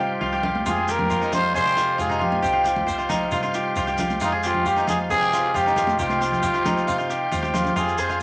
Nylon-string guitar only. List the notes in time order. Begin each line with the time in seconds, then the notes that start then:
Already playing: G2 F3
0.00 C4
0.21 F3
0.45 F4
0.66 F2 F3 G#3 C4 F4
0.89 C4
1.10 F3
1.33 F4
1.54 C3, muted nylon-string guitar stroke
1.77 F4
1.98 G#2
2.21 A#2
2.42 C3 C4
2.66 F4
2.87 F3
3.11 F4
3.32 G2 F4
3.55 F4
3.77 F3
4.00 F4
4.21 F2 G#3
4.45 C4
4.66 F3
4.89 F4
5.12 C3 C4
5.34 F4
5.55 G#2
5.78 A#2
5.99 C3 C4
6.22 C4
6.43 F3
6.65 C4
6.87 muted nylon-string guitar stroke
7.10 C4
7.32 F3
7.55 F4
7.76 F2
7.99 F4